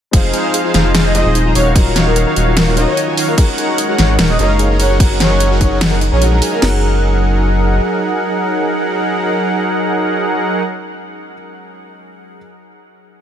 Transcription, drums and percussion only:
0.13 kick, closed hi-hat, crash
0.33 closed hi-hat
0.54 closed hi-hat
0.74 snare, closed hi-hat
0.95 snare, closed hi-hat, crash
1.15 closed hi-hat
1.35 closed hi-hat
1.55 open hi-hat
1.76 kick, closed hi-hat, crash
1.96 snare, closed hi-hat
2.16 closed hi-hat
2.36 closed hi-hat
2.57 snare, closed hi-hat, crash
2.77 closed hi-hat
2.97 closed hi-hat
3.17 open hi-hat
3.38 kick, closed hi-hat, crash
3.58 closed hi-hat
3.78 closed hi-hat
3.98 snare, closed hi-hat
4.19 snare, closed hi-hat, crash
4.39 closed hi-hat
4.59 closed hi-hat
4.80 open hi-hat
5.00 kick, closed hi-hat, crash
5.20 snare, closed hi-hat
5.40 closed hi-hat
5.61 kick, closed hi-hat
5.81 snare, closed hi-hat, crash
6.01 closed hi-hat
6.22 closed hi-hat
6.42 open hi-hat
6.62 snare, crash

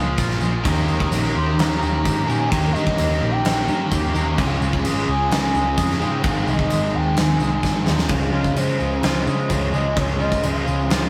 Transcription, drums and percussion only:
0.18 kick, tambourine, crash
0.31 snare
0.41 tambourine
0.64 kick, tambourine, crash
0.88 tambourine
1.00 kick
1.12 tambourine, crash
1.36 tambourine
1.59 snare, tambourine, crash
1.82 tambourine
2.05 kick, tambourine, crash
2.29 tambourine
2.52 kick, tambourine, crash
2.76 tambourine
2.87 kick
2.98 tambourine, crash
3.22 tambourine
3.45 snare, tambourine, crash
3.68 tambourine
3.91 kick, tambourine, crash
4.15 tambourine
4.38 kick, tambourine, crash
4.62 tambourine
4.73 kick
4.85 tambourine, crash
5.08 tambourine
5.31 snare, tambourine, crash
5.55 tambourine
5.78 kick, tambourine, crash
5.91 snare
6.02 tambourine
6.24 kick, tambourine, crash
6.48 tambourine
6.59 kick
6.70 tambourine, crash
7.17 snare, tambourine, crash
7.40 tambourine
7.63 kick, snare, tambourine
7.86 snare, tambourine
7.98 snare
8.09 kick, crash
8.22 tambourine
8.44 kick, tambourine
8.56 tambourine, crash
8.80 tambourine
9.03 snare, crash
9.27 tambourine
9.39 tambourine
9.50 kick, tambourine, crash
9.74 tambourine
9.96 kick, crash
10.09 tambourine
10.21 tambourine
10.32 kick, tambourine
10.43 tambourine, crash
10.67 tambourine
10.79 tambourine
10.90 snare, crash

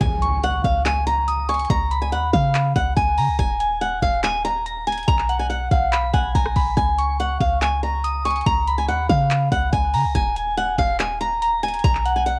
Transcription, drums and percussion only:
0.01 kick, closed hi-hat
0.22 closed hi-hat
0.43 closed hi-hat
0.64 kick, closed hi-hat
0.86 clap, closed hi-hat
1.07 closed hi-hat
1.28 closed hi-hat
1.49 closed hi-hat
1.54 closed hi-hat
1.60 closed hi-hat
1.65 closed hi-hat
1.70 kick, closed hi-hat
1.91 closed hi-hat
2.12 closed hi-hat
2.33 kick, closed hi-hat
2.55 clap, closed hi-hat
2.76 kick, closed hi-hat
2.97 kick, closed hi-hat
3.18 open hi-hat
3.39 kick, closed hi-hat
3.60 closed hi-hat
3.81 closed hi-hat
4.02 kick, closed hi-hat
4.24 clap, closed hi-hat
4.45 closed hi-hat
4.66 closed hi-hat
4.87 closed hi-hat
4.92 closed hi-hat
4.98 closed hi-hat
5.03 closed hi-hat
5.08 kick, closed hi-hat
5.19 clap
5.29 closed hi-hat
5.51 closed hi-hat
5.71 kick, closed hi-hat
5.93 clap, closed hi-hat
6.14 kick, closed hi-hat
6.35 kick, closed hi-hat
6.46 cross-stick
6.56 kick, open hi-hat
6.77 kick, closed hi-hat
6.98 closed hi-hat
7.20 closed hi-hat
7.40 kick, closed hi-hat
7.62 clap, closed hi-hat
7.83 closed hi-hat
8.04 closed hi-hat
8.25 closed hi-hat
8.30 closed hi-hat
8.36 closed hi-hat
8.41 closed hi-hat
8.46 kick, closed hi-hat
8.67 closed hi-hat
8.89 closed hi-hat
9.09 kick, closed hi-hat
9.31 clap, closed hi-hat
9.52 kick, closed hi-hat
9.73 kick, closed hi-hat
9.94 open hi-hat
10.15 kick, closed hi-hat
10.36 closed hi-hat
10.58 closed hi-hat
10.78 kick, closed hi-hat
11.00 clap, closed hi-hat
11.21 closed hi-hat
11.42 closed hi-hat
11.63 closed hi-hat
11.68 closed hi-hat
11.74 closed hi-hat
11.79 closed hi-hat
11.84 kick, closed hi-hat
11.95 clap
12.05 closed hi-hat
12.27 closed hi-hat

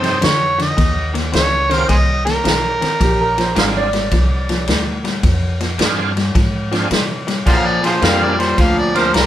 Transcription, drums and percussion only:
0.04 snare, ride
0.22 snare, ride
0.59 snare, ride
0.78 kick, snare, ride
1.15 snare, ride
1.33 snare, ride
1.71 snare, ride
1.89 kick, snare, ride
2.27 snare, ride
2.45 snare, ride
2.82 snare, ride
3.01 kick, snare, ride
3.38 snare, ride
3.56 snare, ride
3.93 snare, ride
4.11 kick, snare, ride
4.49 snare, ride
4.68 snare, ride
5.05 snare, ride
5.23 kick, snare, ride
5.61 snare, ride
5.79 snare, ride
6.17 snare, ride
6.35 kick, snare, ride
6.72 snare, ride
6.91 snare, ride
7.28 snare, ride
7.46 kick, snare, crash
7.84 snare, ride
8.02 snare, ride
8.40 snare, ride
8.58 kick, snare, ride
8.95 snare, ride
9.14 snare, ride

